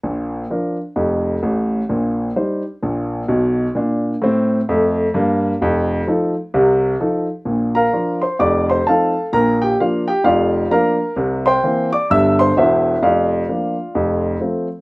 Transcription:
X:1
M:4/4
L:1/8
Q:"Swing" 1/4=129
K:Bb
V:1 name="Grand piano"
z8 | z8 | z8 | z8 |
z [Bfb]2 [cc'] [dd'] [cc'] [Afa]2 | [Bb] [Gg] [Ff] [Gg] [Fdf]2 [Bfb]2 | z [cgc']2 [dd'] [=e=e'] [cc'] [=Ece]2 | [Fdf]6 z2 |]
V:2 name="Grand piano" clef=bass
[B,,,B,,]2 [F,DB]2 [F,,,F,,]2 [A,,,A,,]2 | [B,,,B,,]2 [G,Ec]2 [B,,,B,,]2 [_C,,_C,]2 | [B,,D]2 [A,,C]2 [F,,A,]2 [G,,B,]2 | [F,,,F,,]2 [F,EA]2 [C,,C,]2 [F,EA]2 |
[B,,,B,,]2 [F,DF]2 [F,,,F,,]2 [F,CE]2 | [B,,,B,,]2 [F,B,D]2 [F,,,F,,]2 [F,B,D]2 | [C,,C,]2 [=E,B,C]2 [G,,,G,,]2 [=E,,,=E,,]2 | [F,,,F,,]2 [F,B,D]2 [F,,,F,,]2 [F,A,C]2 |]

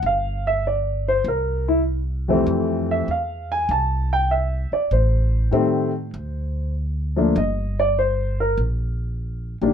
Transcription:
X:1
M:4/4
L:1/8
Q:"Swing" 1/4=98
K:Cmix
V:1 name="Grand piano"
f e d c B E z2 | z e f _a =a g e d | c6 z2 | _e d c B z4 |]
V:2 name="Grand piano"
z6 z [F,,E,G,A,C]- | [F,,E,G,A,C]2 z6 | z2 [_E,G,A,C] z4 [F,A,B,D] | z6 z [_E,G,B,D] |]
V:3 name="Upright bass" clef=bass
G,,,4 C,,4 | F,,2 E,,2 C,,3 z | A,,,2 A,,2 D,,4 | G,,,4 B,,,3 B,,, |]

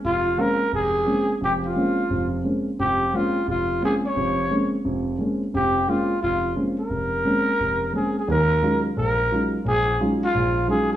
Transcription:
X:1
M:4/4
L:1/8
Q:"Swing" 1/4=175
K:Bbdor
V:1 name="Trumpet"
F2 B2 A4 | G F4 z3 | G2 F2 F2 A d- | d3 z4 z |
G2 F2 F2 z B- | B6 A A | [K:Ebm] B3 z B3 z | A2 z F3 A A |]
V:2 name="Grand piano"
F,,,2 [A,B,CD] z F,,,2 [A,B,CD] z | [F,,,F,,]2 [A,B,CD] z [F,,,F,,]2 [A,B,CD] z | [F,,,F,,]2 [A,B,CD] z F,,,2 [A,B,CD] z | [F,,,F,,]2 [A,B,CD] z [F,,,F,,]2 [A,B,CD] z |
[F,,,F,,]2 [A,B,CD] z F,,,2 [A,B,CD] z | F,,,2 [A,B,CD] z F,,,2 [A,B,CD] z | [K:Ebm] [E,,E,]2 [G,A,DEF] z B,,,2 [G,A,DEF] z | B,,,2 [G,A,DEF] z B,,,2 [G,A,DEF] z |]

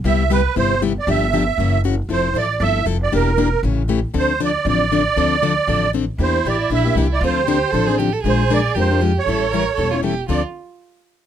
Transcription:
X:1
M:4/4
L:1/8
Q:"Swing" 1/4=234
K:Dm
V:1 name="Accordion"
e2 =B2 c2 z d | e6 z2 | c2 d2 e2 z d | B4 z4 |
c2 d2 d4- | d6 z2 | c2 d2 e2 z d | c6 z2 |
c2 d2 c2 z ^c- | ^c6 z2 | d z6 z |]
V:2 name="Violin"
z8 | z8 | z8 | z8 |
z8 | z8 | E8 | F2 G2 A ^G =G A |
_A4 G4 | A2 B2 A F G2 | F z6 z |]
V:3 name="Steel-string acoustic guitar"
[C,G,=B,EG] z [C,G,B,EG] z [C,G,B,EG] z [C,G,B,EG] z | [D,F,B,DG] z [D,F,B,DG] z [^C,E,^A,^C^F] z [C,E,A,CF] z | [F,CEA] z [F,CEA] z [F,CEA] z [F,CEA] z | [E,B,DG] z [E,B,DG] z [^C,E,A,^CG] z [C,E,A,CG] z |
[D,F,CDA] z [D,F,CDA] z [D,F,CDA] z [D,F,CDA] z | [D,F,CDA] z [D,F,CDA] z [D,F,CDA] z [D,F,CDA] z | [E,B,DG] z [E,B,DG] z [E,B,DG] [B,DG] [E,B,DG] z | [D,F,CDA] z [D,F,CDA] z [D,F,CDA] [CDA] [D,F,CDA] z |
[F,_A,DFB] z [F,A,DFB] z [F,A,DFB] [DFB] [F,A,DFB] z | [E,G,^CEA] z [E,G,CEA] z [E,G,CEA] [CEA] [E,G,CEA] z | [D,F,CDA] z6 z |]
V:4 name="Upright bass" clef=bass
C,,4 G,,,4 | G,,,4 ^F,,,4 | F,,,2 A,,,2 G,,,2 F,,,2 | E,,,4 A,,,4 |
D,,4 A,,,4 | D,,4 A,,,4 | E,,2 A,,,2 B,,,2 C,,2 | D,,4 A,,,4 |
B,,,4 F,,4 | A,,,4 E,,,4 | D,, z6 z |]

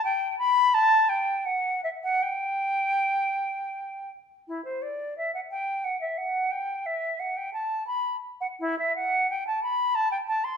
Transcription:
X:1
M:3/4
L:1/16
Q:1/4=86
K:G
V:1 name="Flute"
g2 b2 a2 g2 f2 e f | g8- g2 z2 | [K:Em] E c d2 e f g2 f e f2 | g2 e2 f g a2 b3 f |
E e f2 g a b2 a g a c' |]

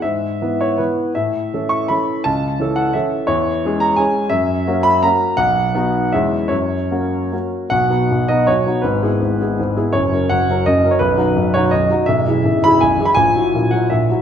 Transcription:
X:1
M:3/4
L:1/16
Q:1/4=166
K:Alyd
V:1 name="Grand piano"
e6 c2 B4 | e6 c'2 b4 | a6 f2 e4 | [K:B] c6 a2 g4 |
e6 b2 a4 | f8 e4 | c8 z4 | f6 d2 c4 |
B8- B2 z2 | c4 f4 d3 c | B6 c2 d4 | e6 b2 g3 b |
g6 f2 e4 |]
V:2 name="Grand piano"
G,,4 [E,B,B]4 [E,B,]4 | A,,4 [E,CA]4 [E,CA]4 | C,,4 [E,CA]4 [E,CA]4 | [K:B] E,,4 [G,CG]4 [G,CG]4 |
F,,4 [A,CF]4 [A,CF]4 | B,,,4 [B,DF]4 [E,,G,CG]4 | F,,4 [A,CF]4 [A,CF]4 | [B,,,B,,]2 [B,DF]2 [B,,,B,,]2 [B,DF]2 [B,,,B,,]2 [B,DF]2 |
[G,,,G,,]2 [B,EG]2 [G,,,G,,]2 [B,EG]2 [G,,,G,,]2 [B,EG]2 | [F,,,F,,]2 [F,CA]2 [F,,,F,,]2 [F,CA]2 [F,,,F,,]2 [F,CA]2 | [B,,,,B,,,]2 [F,DF]2 [B,,,,B,,,]2 [F,DF]2 [B,,,,B,,,]2 [F,DF]2 | [B,,,,B,,,]2 [E,EG]2 [B,,,,B,,,]2 [E,EG]2 [B,,,,B,,,]2 [E,EG]2 |
[A,,,A,,]2 [F,EF]2 [A,,,A,,]2 [F,EF]2 [A,,,A,,]2 [F,EF]2 |]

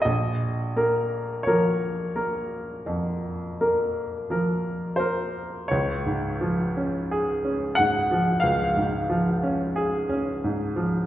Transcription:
X:1
M:4/4
L:1/16
Q:1/4=43
K:Bbm
V:1 name="Grand piano"
e4 d8- d2 c2 | [K:Db] d6 g2 f8 |]
V:2 name="Grand piano"
B,,,2 [B,B]2 [F,B,B]2 [B,B]2 F,,2 [B,B]2 [F,B,B]2 [B,B]2 | [K:Db] D,, A,, F, D A D A,, F, D,, A,, F, D A D A,, F, |]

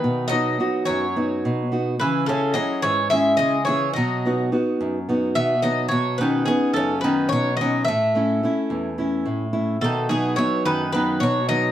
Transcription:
X:1
M:7/8
L:1/8
Q:1/4=107
K:Bmix
V:1 name="Bouzouki"
B d2 c3 z | B A d c e d c | d2 z3 e d | c B G A B c d |
e4 z3 | A G c B B c d |]
V:2 name="Nylon-string guitar"
B,, [B,DF] [B,DF] F,, [B,DF] B,, [B,DF] | C, [CEG] [CEG] G,, [CEG] C, [CEG] | B,, [B,DF] [B,DF] F,, [B,DF] B,, [B,DF] | B,, [B,CD] [B,CD] F,, [B,CD] B,, [B,CD] |
A,, [A,CE] [A,CE] E,, [A,CE] A,, [A,CE] | B,, [F,B,D] [F,B,D] F,, [F,B,D] B,, [F,B,D] |]
V:3 name="Bouzouki" clef=bass
D, F,2 F,3 z | E, C, F, E, G, G, E, | F,2 z3 B, F, | F, D, B, C, D, F, F, |
A,4 z3 | D, B, E, D, D, F, F, |]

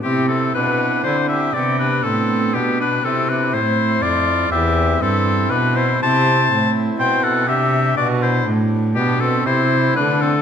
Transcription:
X:1
M:3/4
L:1/8
Q:1/4=121
K:C
V:1 name="Oboe"
G A B2 c e | d B A2 G B | A B c2 d2 | e2 A2 B c |
[K:Dmix] a3 z g f | e2 d c z2 | G A c2 B A |]
V:2 name="Oboe"
C C D2 E G | G D C2 B, D | C D E2 F2 | G2 C2 D E |
[K:Dmix] c3 z c A | G2 F E z2 | B, C E2 D C |]
V:3 name="Pipe organ"
[CE]6 | [B,D]6 | [CE]6 | [CE]6 |
[K:Dmix] [CE]6 | D6 | D2 [CE]2 [A,D]2 |]
V:4 name="Pipe organ" clef=bass
C,2 B,,2 D,2 | C,2 A,,2 B,,2 | C,2 A,,2 F,,2 | E,,2 G,,2 B,,2 |
[K:Dmix] C,2 A,,2 B,,2 | C,2 B,,2 A,,2 | B,,2 C,2 D,2 |]
V:5 name="Cello" clef=bass
C,2 B,,2 D,2 | C,2 A,,2 B,,2 | C,2 A,,2 F,,2 | E,,2 G,,2 B,,2 |
[K:Dmix] C,2 A,,2 B,,2 | C,2 B,,2 A,,2 | B,,2 C,2 D,2 |]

